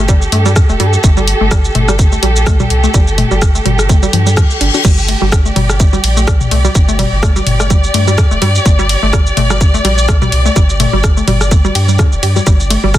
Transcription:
Already playing: G1 G4 A4
0.08 G3, kick, low bongo, shaker
0.22 shaker
0.32 G2 A3, open hi-hat
0.46 G3, low bongo, shaker
0.56 kick, cross-stick, shaker
0.69 F1 A3, shaker
0.80 G2 G3, open hi-hat, low bongo
0.93 shaker
1.04 G1 A3, kick, shaker
1.17 G3, low bongo, shaker
1.28 open hi-hat
1.41 G1 A3
1.51 G3, kick, cross-stick, low bongo, shaker
1.65 shaker
1.75 G1 A3, open hi-hat, mid tom
1.88 G3, cross-stick, low bongo, shaker
1.99 kick, shaker
2.12 A3, shaker
2.23 A#1 G3, open hi-hat, low bongo
2.36 shaker
2.47 A3, kick, cross-stick, shaker
2.60 G3, mid tom, low bongo, shaker
2.70 C2, open hi-hat
2.84 A3, shaker
2.94 G1 G3, kick, low bongo, shaker
3.08 shaker
3.18 A3, open hi-hat, mid tom
3.31 G1 G3, low bongo, shaker
3.42 kick, cross-stick, shaker
3.55 A3, shaker
3.66 G1 G3, open hi-hat, mid tom, low bongo
3.79 cross-stick, shaker
3.89 A3, kick, reverse cymbal, shaker
4.03 G3, low bongo, shaker
4.13 G2 F3, open hi-hat
4.26 G3, shaker
4.37 F3, kick, cross-stick, low bongo, shaker
4.50 shaker
4.61 G1 D4, open hi-hat
4.74 D4, low bongo, shaker
4.84 G1 G3, kick, crash, low bongo, shaker
4.98 shaker
5.08 A3, open hi-hat, ride
5.22 G1 G3, low bongo
5.32 D5, kick, cross-stick, shaker
5.46 A3, shaker
5.56 G1 G3, open hi-hat, mid tom, ride, low bongo
5.70 cross-stick, shaker
5.80 A3, kick, shaker
5.93 G3, low bongo, shaker
6.04 A#1, open hi-hat, ride
6.17 A3, shaker
6.27 G3, kick, cross-stick, low bongo, shaker
6.41 mid tom, shaker
6.51 C2 A3, open hi-hat, ride
6.65 G3, low bongo, shaker
6.75 G1, kick, shaker
6.88 A3, shaker
6.99 G3, open hi-hat, mid tom, ride, low bongo
7.12 G1
7.23 A3, kick, cross-stick, shaker
7.36 G3, low bongo, shaker
7.46 G1, open hi-hat, mid tom, ride
7.60 A3, cross-stick, shaker
7.70 G3, kick, low bongo, shaker
7.84 shaker
7.94 G2 A3, open hi-hat, ride
8.07 G3, low bongo, shaker
8.18 kick, cross-stick, shaker
8.31 F1 A3, shaker
8.42 G2 G3, open hi-hat, ride, low bongo
8.55 shaker
8.66 G1 A3, kick, shaker
8.79 G3, low bongo, shaker
8.89 open hi-hat, ride
9.03 G1 A3
9.13 G3, kick, cross-stick, low bongo, shaker
9.27 shaker
9.37 G1 A3, open hi-hat, mid tom, ride
9.50 G3, cross-stick, low bongo, shaker
9.61 kick, shaker
9.74 A3, shaker
9.85 A#1 G3, open hi-hat, ride, low bongo
9.98 shaker
10.08 A3, kick, cross-stick, shaker
10.22 G3, mid tom, low bongo, shaker
10.32 C2, open hi-hat, ride
10.46 A3, shaker
10.56 G1 G3, kick, low bongo, shaker
10.69 shaker
10.80 A3, open hi-hat, mid tom, ride
10.93 G1 G3, low bongo
11.04 kick, cross-stick, shaker
11.17 A3, shaker
11.28 G1 G3, open hi-hat, mid tom, ride, low bongo
11.41 cross-stick, shaker
11.51 A3, kick, shaker
11.65 G3, low bongo, shaker
11.75 G2 G4, open hi-hat, ride
11.88 G3, shaker
11.99 D3, kick, cross-stick, low bongo, shaker
12.12 F1, shaker
12.23 G2 G4, open hi-hat, ride
12.36 G3, low bongo, shaker
12.47 G1 G3, kick, low bongo, shaker
12.60 shaker
12.70 A3, open hi-hat, ride
12.84 G1 G3, low bongo
12.94 kick, cross-stick, shaker

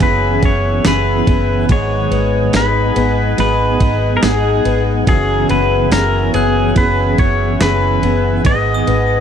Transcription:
Already playing: F#2 B3 C#4 G#4 E5 F#5 G#5 C#6
0.00 F#1 E3 B3 C#4 G#4 B4, kick, ride
0.42 F#1 C#4 C#5, kick, ride
0.84 F#1 E3 B3 C#4 G#4 B5, snare, ride, tambourine
0.88 B4
1.27 F#1 B3, kick, ride
1.69 G#1 G#2 D#3 F#3 B3 D#4 G#4 C#5 D#5, kick, ride
2.11 G#1 B3, ride
2.53 G#1 F#3 B3 D#4 G#4 B4, snare, ride, tambourine
2.96 G#1 B3, ride
3.38 G#1 F#3 B3 D#4 G#4 B4, ride
3.80 G#1 D#4, kick, ride
4.17 A#4
4.22 G#1 F#3 B3 D#4 G#4, snare, ride, tambourine
4.65 G#1 B3, ride
5.06 F#1 F#2 C#3 E3 B3 C#4 G#4 E5, kick, ride
5.49 F#1 B3 B4, ride
5.90 F#1 E3 B3 C#4 G#4 A#4, snare, ride, tambourine
6.34 F#1 B3 G#4 F#6, ride
6.75 F#1 E3 B3 C#4 G#4 B4, kick, ride
7.18 F#1 C#5, kick, ride
7.59 F#1 E3 B3 C#4 G#4 B4, snare, ride, tambourine
8.02 F#1 B3, ride
8.44 G#1 G#2 D#3 F#3 B3 D#4 G#4 D#5 F#5, kick, ride
8.74 D#6
8.87 G#1 B3, ride

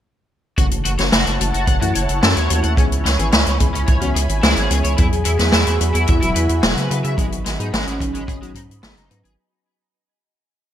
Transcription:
0.57 F#1 E3 A3 C#4 E4 F#4 C#5 F#5 A5, kick, closed hi-hat
0.71 F#1, closed hi-hat
0.85 F#1 F#4, closed hi-hat
0.98 F#1 E3 A3 C#4 F#4 C#5, snare, closed hi-hat
1.12 F#1 F#4, snare, closed hi-hat
1.26 F#1 F#4, closed hi-hat
1.40 F#1 E3 A3 C#4 F#4, closed hi-hat
1.54 F#1 F#4, closed hi-hat
1.67 F#1 F#5, kick, closed hi-hat
1.81 F#2 E3 A3 C#4 E4 F#4, closed hi-hat
1.95 F#1 C#5, closed hi-hat
2.09 F#1, closed hi-hat
2.23 F#2 E3 A3 C#4 F#4 A4, snare, closed hi-hat
2.36 D#2 C#5, closed hi-hat
2.50 D#2 E3 A3 C#4 F#4 C#5, closed hi-hat
2.63 D#2 F#5, closed hi-hat
2.77 C#2 E3 B3 C#4 G#4 G#5 B5, kick, closed hi-hat
2.92 C#2, closed hi-hat
3.05 C#2 C#4, snare, closed hi-hat
3.19 G#1 E3 B3 C#4 G#4, closed hi-hat
3.32 C#2 C#4, snare, closed hi-hat
3.46 C#2 C#4, closed hi-hat
3.60 C#2 E3 B3 C#4 G#4, kick, closed hi-hat
3.74 C#2 C#4, closed hi-hat
3.87 C#2 C#5, kick, closed hi-hat
4.01 C#2 E3 B3 C#4 F#4, closed hi-hat
4.15 C#2 G#4, closed hi-hat
4.29 G#1, closed hi-hat
4.43 C#2 E3 B3 C#4 E4 G#4, snare, closed hi-hat
4.56 G#1 G#4, closed hi-hat
4.70 C#2 E3 B3 C#4 G#4, closed hi-hat
4.84 C#2 C#5, closed hi-hat
4.98 E2 F#3 B3 E4 F#4 G#4 E5 B5, kick, closed hi-hat
5.12 E2, closed hi-hat
5.25 E2 E4, closed hi-hat
5.39 E2 F#3 B3 E4 G#4 B4, snare, closed hi-hat
5.52 E2 E4, snare, closed hi-hat
5.67 E2 E4, closed hi-hat
5.81 E2 F#3 B3 E4 G#4, closed hi-hat
5.94 E2 E4, closed hi-hat
6.07 E2 E4 E5, kick, closed hi-hat
6.22 E1 F#3 B3 E4 F#4, closed hi-hat
6.35 E2 B4, closed hi-hat
6.49 E2, closed hi-hat
6.63 E1 F#3 B3 E4 G#4, snare, closed hi-hat
6.77 C#3 B4, closed hi-hat
6.91 C#3 F#3 B3 E4 G#4 B4, closed hi-hat
7.04 C#3 E5, closed hi-hat
7.18 G#1 F#3 G#3 B3 D#4 G#4 D#5 B5, kick, closed hi-hat
7.32 G#1, closed hi-hat
7.46 G#1 G#3, snare, closed hi-hat
7.59 G#2 F#3 B3 D#4 G#4, closed hi-hat
7.73 G#1 G#3 C#4, snare, closed hi-hat
7.87 G#1 G#3, closed hi-hat
8.00 G#1 F#3 B3 D#4 G#4, kick, closed hi-hat
8.14 G#1 G#3, closed hi-hat
8.28 G#1 G#4, kick, closed hi-hat
8.42 G#1 F#3 G#3 B3 D#4 F#4, closed hi-hat
8.55 G#2 D#4, kick, closed hi-hat
8.69 G#2, closed hi-hat
8.83 G#1 F#3 B3 D#4 G#4, snare, closed hi-hat
8.97 F#1 D#4, closed hi-hat
9.11 G#2 F#3 B3 D#4 B4, closed hi-hat
9.25 G#1 G#4, closed hi-hat

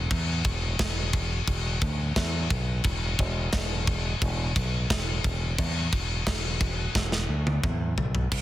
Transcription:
0.11 E2, kick, crash
0.44 E1, kick, crash
0.79 E1, kick, snare, crash
1.13 kick, crash
1.47 E1, kick, crash
1.81 D2, kick, crash
2.16 E2, kick, snare, crash
2.50 B1, kick, crash
2.84 E1, kick, crash
3.19 E1, kick, crash
3.52 E1, kick, snare, crash
3.87 kick, crash
4.22 E1, kick, crash
4.56 B1, kick, crash
4.90 E1, kick, snare, crash
5.24 E1, kick, crash
5.58 E2, kick, crash
5.92 E1, kick, crash
6.27 E1, kick, snare, crash
6.61 kick, crash
6.95 E1, kick, snare
7.12 snare
7.29 D2
7.47 high tom
7.63 E2, kick, mid tom
7.97 B1, floor tom
8.15 floor tom
8.32 C2, kick, crash

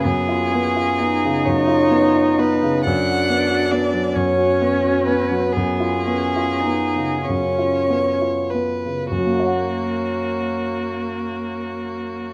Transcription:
0.04 F#2 B3 G#4
0.29 F4
0.51 B3 C#4
0.76 F4
0.98 B3 D#4
1.25 C#3
1.45 F#2 C#5
1.68 F4
1.91 B3
2.15 F4
2.39 B3 B4
2.63 C#3
2.84 F#2 D4 F#5
3.11 F#4
3.30 B3
3.51 F#4
3.71 B3 D5
3.94 F#3
4.14 F#2 C#4 C#5
4.38 F#4
4.61 B3
4.84 F#4
5.05 B3 B4
5.31 F#3
5.49 B3 G#4
5.57 F#2
5.80 F4
6.02 C#4
6.07 B3
6.36 F4
6.60 D#4
6.66 B3
6.96 C#3
7.22 C#4 C#5
7.29 F#2
7.59 F4
7.90 B3
8.22 F4
8.50 B4
8.54 B3
8.86 C#3
9.07 A#3
9.11 F#2 F#4
9.18 F#3
9.25 A#3
9.33 F#4
9.40 C#5
9.46 F#5

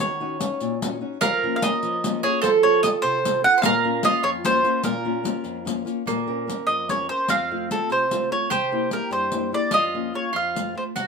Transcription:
Already playing: C#4 D#4 F#4
0.00 D#3 C#5, riq
0.20 C#4 D#4 F#4
0.40 C#4 D#4 F#4, riq
0.60 A#2, riq
0.82 C#4 D#4 F#4, riq
1.01 C#4 D#4 F#4
1.21 F3 A#4 F5, riq
1.43 A#3 C#4 F4
1.56 F5
1.62 A#3 C#4 F4 D#5, riq
1.83 F3, riq
2.04 A#3 C#4 F4, riq
2.23 A#3 C#4 F4 G#4 C#5, riq
2.42 F3 A4 C5, riq
2.63 C4 F4 A4 C#5
2.83 C4 F4 A4 D#5, riq
3.02 C3 C5, riq
3.25 C4 F4 A4, riq
3.44 C4 F4 A4 F#5, riq
3.58 C5
3.62 A#2 A#4 F5, riq
3.84 A#3 C#4 F4
4.03 A#3 C#4 F4 D#5, riq
4.23 F2 C#5, riq
4.44 A#3 C#4 F4 C5, riq
4.63 A#3 C#4 F4, riq
4.83 A#2 A#4, riq
5.05 A#3 C#4 F4
5.23 A#3 C#4 F4, riq
5.44 F2, riq
5.65 A#3 C#4 F4, riq
5.85 A#3 C#4 F4, riq
6.06 A#2 A#3, riq
6.27 C4 C#4 A#4
6.47 C4 C#4 A#4, riq
6.67 F2 D#5, riq
6.89 C4 C#4 A#4 C#5, riq
7.09 C4 C#4 A#4 C5
7.28 F2 C4 F5, riq
7.51 A3 C4 F4
7.70 A3 C4 F4 A4, riq
7.90 C3 C5, riq
8.11 A3 C4 F4, riq
8.31 A3 C4 F4 C#5
8.50 C3 G4 C5, riq
8.72 A#3 C4 E4
8.91 A#3 C4 E4 A#4, riq
9.11 G2 C5, riq
9.32 A#3 C4 E4, riq
9.52 A#3 C4 E4 D5
9.71 F2 F4 D#5, riq
9.94 A#3 C#4 F4
10.14 A#3 C#4 F4 C#5
10.33 F2 F4 F5
10.55 A3 C4 F4, riq
10.74 A3 C4 F4 C5
10.95 C3 F#4, riq

